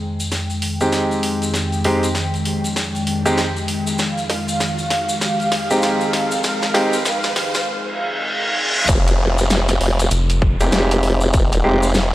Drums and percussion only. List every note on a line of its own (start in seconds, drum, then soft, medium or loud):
0.20 open hi-hat soft
0.20 shaker medium
0.32 snare soft
0.32 open hi-hat soft
0.32 shaker medium
0.50 open hi-hat soft
0.50 shaker soft
0.62 open hi-hat medium
0.81 open hi-hat soft
0.81 shaker medium
0.92 snare medium
0.92 open hi-hat soft
0.92 shaker medium
1.11 open hi-hat soft
1.11 shaker soft
1.23 open hi-hat medium
1.42 open hi-hat soft
1.42 shaker medium
1.54 snare medium
1.54 open hi-hat soft
1.54 shaker medium
1.72 open hi-hat soft
1.72 shaker soft
1.84 open hi-hat medium
2.03 open hi-hat soft
2.03 shaker medium
2.15 snare medium
2.15 open hi-hat soft
2.15 shaker medium
2.34 open hi-hat soft
2.34 shaker soft
2.45 open hi-hat medium
2.64 open hi-hat soft
2.64 shaker medium
2.76 snare medium
2.76 open hi-hat soft
2.76 shaker medium
2.95 open hi-hat soft
2.95 shaker soft
3.07 open hi-hat medium
3.26 open hi-hat soft
3.26 shaker medium
3.37 snare medium
3.37 open hi-hat soft
3.37 shaker medium
3.56 open hi-hat soft
3.56 shaker soft
3.68 open hi-hat medium
3.87 open hi-hat soft
3.87 shaker medium
3.98 snare medium
3.98 open hi-hat soft
3.98 shaker medium
4.17 open hi-hat soft
4.17 shaker soft
4.30 snare medium
4.30 open hi-hat medium
4.48 open hi-hat soft
4.48 shaker medium
4.60 snare medium
4.60 open hi-hat soft
4.60 shaker medium
4.78 open hi-hat soft
4.78 shaker soft
4.90 snare medium
4.90 open hi-hat medium
5.09 open hi-hat soft
5.09 shaker medium
5.21 snare medium
5.21 open hi-hat soft
5.21 shaker medium
5.40 open hi-hat soft
5.40 shaker soft
5.52 snare medium
5.52 open hi-hat medium
5.71 open hi-hat soft
5.71 shaker medium
5.82 snare medium
5.82 open hi-hat soft
5.82 shaker medium
6.01 open hi-hat soft
6.01 shaker soft
6.13 snare medium
6.13 open hi-hat medium
6.31 open hi-hat soft
6.31 shaker medium
6.43 snare medium
6.43 open hi-hat soft
6.43 shaker medium
6.62 snare medium
6.62 open hi-hat soft
6.62 shaker soft
6.75 snare medium
6.75 open hi-hat medium
6.93 open hi-hat soft
6.93 shaker medium
7.05 snare medium
7.05 open hi-hat soft
7.05 shaker medium
7.23 snare medium
7.23 open hi-hat soft
7.23 shaker soft
7.36 snare loud
7.36 open hi-hat medium
7.54 snare medium
7.54 open hi-hat soft
7.54 shaker medium
8.89 kick loud
8.89 closed hi-hat medium
8.89 shaker medium
9.08 closed hi-hat medium
9.08 shaker soft
9.38 shaker medium
9.50 snare loud
9.50 closed hi-hat medium
9.50 shaker medium
9.68 snare soft
9.68 closed hi-hat medium
9.68 shaker soft
9.81 open hi-hat medium
9.99 closed hi-hat soft
9.99 shaker medium
10.11 closed hi-hat medium
10.11 shaker medium
10.30 closed hi-hat medium
10.30 shaker soft
10.42 kick loud
10.60 closed hi-hat soft
10.60 shaker medium
10.72 snare loud
10.72 closed hi-hat medium
10.72 shaker medium
10.91 closed hi-hat medium
10.91 shaker soft
11.03 open hi-hat medium
11.21 shaker medium
11.33 kick loud
11.33 closed hi-hat medium
11.33 shaker medium
11.52 closed hi-hat medium
11.52 shaker soft
11.83 shaker medium
11.94 snare loud
11.94 closed hi-hat medium
11.94 shaker medium